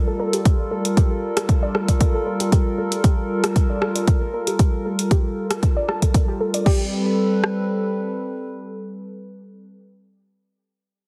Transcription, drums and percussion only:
0.33 closed hi-hat medium
0.45 kick loud
0.45 closed hi-hat medium
0.85 closed hi-hat medium
0.97 kick loud
0.97 closed hi-hat medium
1.37 cross-stick medium
1.37 closed hi-hat medium
1.49 kick loud
1.49 closed hi-hat soft
1.75 cross-stick medium
1.88 kick medium
1.88 closed hi-hat medium
2.00 kick loud
2.00 closed hi-hat medium
2.40 closed hi-hat medium
2.52 kick loud
2.52 closed hi-hat medium
2.92 closed hi-hat medium
3.04 kick loud
3.04 closed hi-hat medium
3.44 cross-stick medium
3.44 closed hi-hat medium
3.56 kick loud
3.56 closed hi-hat medium
3.82 cross-stick medium
3.96 closed hi-hat medium
4.08 kick loud
4.08 closed hi-hat medium
4.47 closed hi-hat medium
4.59 kick loud
4.59 closed hi-hat medium
4.99 closed hi-hat medium
5.11 kick loud
5.11 closed hi-hat medium
5.51 cross-stick medium
5.51 closed hi-hat medium
5.63 kick loud
5.63 closed hi-hat medium
5.89 cross-stick medium
6.02 kick medium
6.02 closed hi-hat medium
6.14 kick loud
6.14 closed hi-hat medium
6.54 closed hi-hat medium
6.66 kick loud
6.66 crash medium
7.44 cross-stick medium

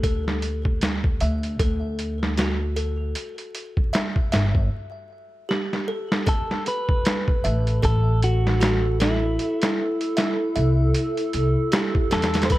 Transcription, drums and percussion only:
0.03 kick loud
0.03 closed hi-hat medium
0.28 snare medium
0.42 closed hi-hat medium
0.65 kick medium
0.81 snare loud
0.81 closed hi-hat medium
1.04 kick medium
1.20 closed hi-hat medium
1.43 closed hi-hat soft
1.59 kick loud
1.59 closed hi-hat medium
1.99 closed hi-hat medium
2.23 snare medium
2.37 snare loud
2.37 closed hi-hat medium
2.77 closed hi-hat medium
3.15 closed hi-hat medium
3.38 closed hi-hat soft
3.55 closed hi-hat medium
3.77 kick medium
3.94 snare loud
3.94 closed hi-hat medium
4.16 kick medium
4.32 snare loud
4.32 closed hi-hat medium
4.55 kick medium
5.51 snare medium
5.73 snare medium
6.12 snare medium
6.27 kick loud
6.27 closed hi-hat medium
6.51 snare soft
6.66 closed hi-hat medium
6.89 kick medium
7.05 snare loud
7.05 closed hi-hat medium
7.28 kick medium
7.45 closed hi-hat medium
7.67 closed hi-hat soft
7.83 kick loud
7.83 closed hi-hat medium
8.22 closed hi-hat medium
8.47 snare medium
8.61 snare loud
8.61 closed hi-hat medium
9.00 snare loud
9.00 closed hi-hat medium
9.39 closed hi-hat medium
9.62 snare loud
9.62 closed hi-hat medium
10.01 closed hi-hat medium
10.17 snare medium
10.17 closed hi-hat medium
10.56 closed hi-hat medium
10.94 closed hi-hat medium
11.17 closed hi-hat soft
11.33 closed hi-hat medium
11.72 snare loud
11.72 closed hi-hat medium
11.95 kick medium
12.11 snare medium
12.11 closed hi-hat medium
12.22 snare medium
12.22 closed hi-hat medium
12.34 snare medium
12.34 closed hi-hat medium
12.42 snare medium
12.42 closed hi-hat medium
12.50 kick loud
12.50 closed hi-hat medium

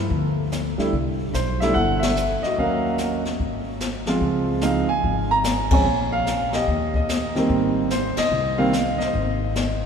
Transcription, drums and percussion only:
0.10 brush sweep soft
0.10 kick soft
0.52 snare medium
0.52 hi-hat pedal medium
0.79 snare soft
0.93 brush sweep soft
0.93 kick soft
1.34 snare medium
1.34 hi-hat pedal medium
1.61 snare soft
1.76 brush sweep medium
1.76 kick soft
2.03 snare medium
2.03 ride medium
2.17 hi-hat pedal medium
2.43 snare soft
2.58 brush sweep soft
2.58 kick soft
2.98 snare medium
2.98 hi-hat pedal soft
3.25 snare soft
3.40 brush sweep medium
3.40 kick soft
3.80 snare medium
3.80 hi-hat pedal medium
4.06 snare soft
4.21 brush sweep soft
4.21 kick soft
4.61 snare medium
4.61 hi-hat pedal medium
5.03 brush sweep soft
5.03 kick soft
5.44 snare medium
5.44 hi-hat pedal medium
5.71 kick medium
5.71 ride medium
5.86 brush sweep soft
6.26 snare soft
6.26 hi-hat pedal medium
6.53 snare medium
6.68 brush sweep soft
6.68 kick soft
6.94 kick soft
7.09 snare medium
7.09 hi-hat pedal medium
7.36 snare soft
7.50 brush sweep soft
7.50 kick soft
7.90 snare medium
7.90 hi-hat pedal soft
8.17 snare medium
8.17 ride medium
8.32 brush sweep medium
8.73 snare medium
8.73 hi-hat pedal medium
9.00 snare soft
9.14 brush sweep soft
9.14 kick soft
9.55 snare medium
9.55 hi-hat pedal soft

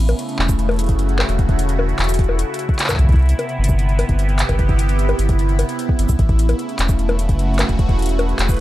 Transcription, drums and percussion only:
0.09 closed hi-hat medium
0.09 high bongo medium
0.19 closed hi-hat medium
0.29 closed hi-hat soft
0.39 clap loud
0.49 kick loud
0.49 closed hi-hat medium
0.49 shaker medium
0.59 closed hi-hat medium
0.69 closed hi-hat soft
0.69 high bongo medium
0.71 closed hi-hat soft
0.74 closed hi-hat soft
0.76 closed hi-hat soft
0.79 closed hi-hat loud
0.81 closed hi-hat soft
0.84 closed hi-hat soft
0.86 closed hi-hat soft
0.89 kick loud
0.89 closed hi-hat medium
0.99 closed hi-hat medium
1.09 closed hi-hat soft
1.19 clap loud
1.19 high bongo medium
1.29 closed hi-hat medium
1.39 kick loud
1.39 closed hi-hat medium
1.49 kick loud
1.49 closed hi-hat soft
1.59 closed hi-hat loud
1.69 closed hi-hat medium
1.79 high bongo medium
1.89 closed hi-hat soft
1.99 clap loud
1.99 closed hi-hat soft
2.04 closed hi-hat medium
2.09 closed hi-hat medium
2.09 shaker medium
2.14 closed hi-hat medium
2.19 kick loud
2.19 closed hi-hat medium
2.29 high bongo medium
2.39 closed hi-hat loud
2.54 closed hi-hat medium
2.59 closed hi-hat medium
2.69 kick loud
2.69 closed hi-hat soft
2.74 closed hi-hat soft
2.79 clap loud
2.79 closed hi-hat medium
2.84 clap medium
2.89 kick soft
2.89 clap medium
2.89 closed hi-hat medium
2.89 high bongo medium
2.89 shaker medium
2.92 kick medium
2.92 clap medium
2.96 kick medium
2.96 closed hi-hat medium
2.99 kick medium
3.04 kick medium
3.09 kick loud
3.09 closed hi-hat soft
3.12 kick loud
3.12 closed hi-hat soft
3.16 closed hi-hat soft
3.19 closed hi-hat soft
3.22 closed hi-hat soft
3.26 closed hi-hat soft
3.29 closed hi-hat medium
3.39 closed hi-hat medium
3.39 high bongo medium
3.49 closed hi-hat soft
3.64 closed hi-hat medium
3.69 kick loud
3.69 shaker medium
3.79 closed hi-hat medium
3.89 closed hi-hat soft
3.99 closed hi-hat loud
3.99 high bongo medium
4.09 kick loud
4.09 closed hi-hat medium
4.19 closed hi-hat medium
4.29 closed hi-hat soft
4.39 clap loud
4.39 closed hi-hat loud
4.49 kick medium
4.49 closed hi-hat medium
4.49 high bongo medium
4.59 kick loud
4.59 closed hi-hat medium
4.69 kick loud
4.69 closed hi-hat soft
4.79 closed hi-hat medium
4.89 closed hi-hat medium
4.99 closed hi-hat medium
5.09 closed hi-hat soft
5.09 high bongo medium
5.19 closed hi-hat medium
5.29 kick loud
5.29 closed hi-hat medium
5.39 closed hi-hat medium
5.49 closed hi-hat soft
5.59 closed hi-hat medium
5.59 high bongo medium
5.69 closed hi-hat medium
5.79 closed hi-hat medium
5.89 kick loud
5.99 closed hi-hat medium
6.09 kick medium
6.09 closed hi-hat medium
6.09 shaker medium
6.19 kick loud
6.19 closed hi-hat medium
6.29 kick loud
6.29 closed hi-hat soft
6.39 closed hi-hat medium
6.49 closed hi-hat medium
6.49 high bongo medium
6.59 closed hi-hat medium
6.69 closed hi-hat soft
6.79 clap loud
6.79 closed hi-hat medium
6.89 kick loud
6.89 closed hi-hat medium
6.89 shaker medium
6.99 closed hi-hat soft
7.09 closed hi-hat soft
7.09 high bongo medium
7.19 closed hi-hat medium
7.29 kick loud
7.29 closed hi-hat medium
7.39 closed hi-hat medium
7.54 closed hi-hat soft
7.59 clap loud
7.59 closed hi-hat medium
7.59 high bongo medium
7.69 kick medium
7.69 closed hi-hat medium
7.79 kick loud
7.79 closed hi-hat medium
7.89 kick loud
7.89 closed hi-hat soft
7.99 closed hi-hat soft
8.02 closed hi-hat medium
8.06 closed hi-hat medium
8.09 closed hi-hat medium
8.19 closed hi-hat medium
8.19 high bongo medium
8.29 closed hi-hat soft
8.39 clap loud
8.39 closed hi-hat medium
8.49 kick loud
8.49 closed hi-hat soft
8.49 shaker medium
8.52 closed hi-hat soft
8.54 closed hi-hat soft
8.57 closed hi-hat soft

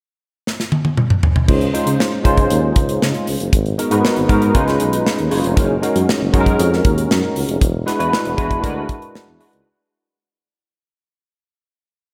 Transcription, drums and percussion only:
0.47 snare soft
0.60 snare soft
0.72 high tom medium
0.85 high tom medium
0.97 mid tom medium
1.10 mid tom medium
1.23 floor tom medium
1.36 floor tom medium
1.48 kick loud
1.48 crash medium
1.61 closed hi-hat soft
1.75 closed hi-hat medium
1.87 closed hi-hat medium
2.00 snare loud
2.25 kick medium
2.25 closed hi-hat medium
2.37 kick medium
2.37 closed hi-hat soft
2.50 closed hi-hat medium
2.76 kick medium
2.76 closed hi-hat medium
2.89 closed hi-hat soft
3.02 snare medium
3.14 closed hi-hat soft
3.27 open hi-hat medium
3.40 closed hi-hat soft
3.53 kick medium
3.53 closed hi-hat medium
3.66 closed hi-hat soft
3.79 closed hi-hat medium
3.91 closed hi-hat medium
4.05 snare loud
4.16 closed hi-hat soft
4.29 kick medium
4.29 closed hi-hat medium
4.42 closed hi-hat soft
4.55 kick medium
4.55 closed hi-hat medium
4.68 snare soft
4.68 closed hi-hat soft
4.80 closed hi-hat medium
4.93 closed hi-hat medium
5.07 snare medium
5.18 closed hi-hat soft
5.31 open hi-hat medium
5.44 closed hi-hat soft
5.57 kick loud
5.57 closed hi-hat medium
5.83 closed hi-hat medium
5.96 closed hi-hat medium
6.09 snare loud
6.34 kick medium
6.34 closed hi-hat medium
6.46 kick medium
6.46 closed hi-hat soft
6.59 closed hi-hat medium
6.73 snare soft
6.85 kick loud
6.85 closed hi-hat medium
6.98 closed hi-hat medium
7.11 snare loud
7.36 open hi-hat medium
7.49 closed hi-hat medium
7.61 kick loud
7.61 closed hi-hat medium
7.88 snare soft
7.88 closed hi-hat medium
8.00 closed hi-hat medium
8.13 snare loud
8.25 closed hi-hat soft
8.38 kick medium
8.38 closed hi-hat medium
8.51 kick medium
8.51 closed hi-hat soft
8.64 kick medium
8.64 closed hi-hat medium
8.89 kick loud
8.89 closed hi-hat medium
9.02 closed hi-hat soft
9.15 snare loud
9.41 open hi-hat medium
9.53 closed hi-hat medium

